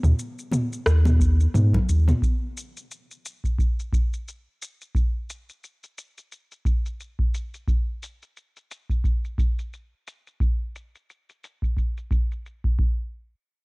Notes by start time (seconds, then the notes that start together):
0.03 D#2, mid tom, shaker
0.19 shaker
0.39 shaker
0.51 mid tom, high conga, shaker
0.73 shaker
0.86 D#2, cross-stick, shaker
1.05 mid tom, high conga, shaker
1.20 kick, shaker
1.40 shaker
1.54 G#2, mid tom, high conga, shaker
1.74 kick, low conga
1.89 D#2, shaker
2.08 mid tom, high conga, shaker
2.22 kick, shaker
2.57 shaker
2.77 shaker
2.91 shaker
3.11 shaker
3.25 shaker
3.44 kick, shaker
3.59 kick, shaker
3.79 shaker
3.93 kick, shaker
4.14 shaker
4.28 shaker
4.62 shaker
4.81 shaker
4.95 kick, shaker
5.30 shaker
5.49 shaker
5.64 shaker
5.83 shaker
5.98 shaker
6.18 shaker
6.32 shaker
6.52 shaker
6.65 kick, shaker
6.86 shaker
7.00 shaker
7.19 kick
7.34 shaker
7.54 shaker
7.68 kick, shaker
8.03 shaker
8.22 shaker
8.37 shaker
8.56 shaker
8.71 shaker
8.90 kick, shaker
9.04 kick, shaker
9.25 shaker
9.38 kick, shaker
9.59 shaker
9.73 shaker
10.07 shaker
10.27 shaker
10.40 kick, shaker
10.76 shaker
10.95 shaker
11.10 shaker
11.29 shaker
11.44 shaker
11.62 kick, shaker
11.77 kick, shaker
11.97 shaker
12.11 kick, shaker
12.32 shaker
12.46 shaker
12.64 kick
12.79 kick